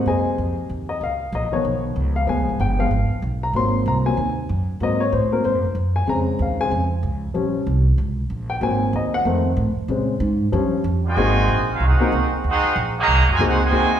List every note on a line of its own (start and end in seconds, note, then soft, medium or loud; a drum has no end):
0.00 0.97 C3 soft
0.00 0.97 G#3 soft
0.00 0.98 A#3 medium
0.06 0.37 F#2 medium
0.06 0.54 G#4 medium
0.06 0.54 C5 medium
0.06 0.55 D#5 medium
0.06 0.54 G#5 medium
0.38 0.69 F2 medium
0.69 1.00 D#2 medium
0.89 1.01 D#5 medium
1.01 1.32 C#2 medium
1.01 1.32 F5 medium
1.32 1.51 A#1 loud
1.32 1.53 D#5 medium
1.52 2.24 D#3 soft
1.52 2.24 F3 medium
1.52 2.25 B3 medium
1.52 1.82 C#5 medium
1.52 muted upright bass stroke soft
1.65 1.95 B1 medium
1.96 2.27 C#2 loud
2.16 2.28 F5 medium
2.27 2.40 D2 medium
2.27 2.78 F3 soft
2.27 2.78 G#3 soft
2.27 2.78 B3 medium
2.27 2.58 G#5 medium
2.38 2.48 B1 medium
2.49 2.59 G#1 medium
2.60 2.90 G1 loud
2.60 2.79 G5 medium
2.79 2.90 F3 soft
2.79 2.90 G#3 soft
2.79 2.91 B3 medium
2.79 3.09 F5 medium
2.91 3.09 G#1 medium
3.10 muted upright bass stroke soft
3.22 3.53 B1 medium
3.43 3.55 A#5 medium
3.53 3.85 G#1 medium
3.53 4.03 F#3 soft
3.53 4.03 A#3 soft
3.53 4.04 C4 medium
3.53 3.85 C6 medium
3.86 4.17 C2 loud
3.86 4.06 A#5 medium
4.05 4.17 F#3 soft
4.05 4.17 A#3 soft
4.05 4.17 C4 medium
4.05 4.35 G#5 medium
4.17 4.48 D#2 medium
4.49 4.80 F#2 loud
4.80 5.12 G#2 medium
4.80 5.04 F#3 soft
4.80 5.05 A#3 soft
4.80 5.05 C4 medium
4.80 5.01 D#5 medium
5.00 5.12 C#5 medium
5.12 5.43 A2 medium
5.12 5.32 C5 medium
5.32 5.43 F#3 soft
5.32 5.43 A#3 soft
5.32 5.44 C4 medium
5.32 5.44 A#4 medium
5.44 5.55 G#2 medium
5.44 5.57 C5 medium
5.55 5.64 F#2 medium
5.65 5.74 D#2 medium
5.75 6.06 F#2 medium
5.96 6.08 G#5 medium
6.07 6.38 F2 medium
6.07 6.56 C#3 soft
6.07 6.57 G#3 soft
6.07 6.57 C4 medium
6.07 6.38 A#5 medium
6.39 6.70 D#2 medium
6.39 6.60 F5 medium
6.60 6.71 C#3 soft
6.60 6.71 G#3 soft
6.60 6.71 C4 medium
6.60 6.72 G#5 loud
6.71 7.02 F2 medium
7.03 7.34 C#2 medium
7.34 7.66 A#1 medium
7.34 7.58 F3 soft
7.34 7.58 G3 soft
7.34 7.58 C#4 medium
7.67 7.97 C2 loud
7.98 8.29 C#2 medium
8.30 8.60 A#1 medium
8.50 8.62 G5 medium
8.61 8.92 G#1 medium
8.61 9.22 F#3 medium
8.61 9.22 A#3 soft
8.61 9.22 C4 medium
8.61 8.92 G#5 medium
8.93 9.24 D#2 loud
8.93 9.14 D#5 medium
9.14 9.21 F#5 medium
9.25 9.56 F2 medium
9.25 9.48 D#3 medium
9.25 9.49 A3 medium
9.25 9.50 C4 medium
9.57 9.75 A2 loud
9.76 muted upright bass stroke soft
9.88 10.20 A#2 medium
9.88 10.12 C#3 medium
9.88 10.13 G#3 soft
9.88 10.13 C4 medium
10.20 10.51 G#2 loud
10.52 10.84 G2 loud
10.52 10.76 F3 medium
10.52 10.76 G3 medium
10.52 10.76 C#4 medium
10.84 11.15 F2 loud
11.05 11.64 C3 medium
11.05 11.64 D#3 medium
11.05 11.64 G#3 medium
11.05 11.65 F#4 medium
11.05 11.65 C5 medium
11.05 11.65 D#5 medium
11.05 11.66 G#5 loud
11.16 11.47 G#1 medium
11.16 11.64 A#3 medium
11.16 11.64 C4 medium
11.16 11.64 D#4 medium
11.16 11.65 F#4 medium
11.16 11.64 G#4 medium
11.48 11.79 A#1 loud
11.70 11.83 C#4 medium
11.70 11.81 F4 medium
11.70 11.83 F#4 medium
11.70 11.83 A#4 medium
11.70 11.83 F5 medium
11.80 11.98 C2 medium
11.80 12.33 C4 medium
11.80 12.33 D#4 medium
11.80 12.33 F#4 medium
11.86 12.34 D#4 medium
11.86 12.35 G#4 medium
11.86 12.34 C5 medium
11.86 12.34 F#5 medium
11.99 12.11 A#3 medium
11.99 12.11 C4 medium
11.99 12.11 D#4 medium
11.99 12.11 F#4 medium
11.99 12.11 A#4 medium
11.99 muted upright bass stroke soft
12.12 12.30 C#2 loud
12.32 muted upright bass stroke soft
12.44 12.62 D#2 medium
12.44 12.75 C4 medium
12.44 12.75 D#4 medium
12.44 12.75 F#4 medium
12.50 12.76 D#4 loud
12.50 12.77 G#4 loud
12.50 12.77 C5 loud
12.50 12.77 F#5 loud
12.63 muted upright bass stroke soft
12.76 13.07 A#1 loud
12.98 13.26 D#3 loud
12.98 13.26 F#3 loud
12.98 13.27 A#3 loud
12.98 13.27 G#4 loud
12.98 13.27 D#5 loud
12.98 13.28 F#5 medium
12.98 13.28 A#5 loud
13.08 13.20 C2 loud
13.18 13.28 G#1 medium
13.29 13.39 F#1 medium
13.29 13.41 C3 medium
13.29 13.41 D#3 medium
13.29 13.41 G#3 medium
13.29 13.41 F#4 medium
13.29 13.41 C5 medium
13.29 13.42 D#5 medium
13.29 13.42 G#5 loud
13.39 13.70 C#2 loud
13.39 13.57 A#3 medium
13.39 13.57 C4 medium
13.39 13.60 C4 medium
13.39 13.57 D#4 medium
13.39 13.60 D#4 medium
13.39 13.57 F#4 medium
13.39 13.60 F#4 medium
13.39 13.58 G#4 medium
13.46 13.62 D#4 medium
13.46 13.62 G#4 medium
13.46 13.62 C5 medium
13.46 13.62 F#5 loud
13.62 14.00 C3 medium
13.62 14.00 D#3 medium
13.62 14.00 G#3 medium
13.62 14.00 F#4 medium
13.62 14.00 C5 medium
13.62 14.00 D#5 medium
13.62 14.00 G#5 loud
13.71 14.00 D#2 medium
13.71 13.89 A#3 medium
13.71 13.89 C4 medium
13.71 13.89 D#4 medium
13.71 13.89 F#4 medium
13.71 13.89 G#4 medium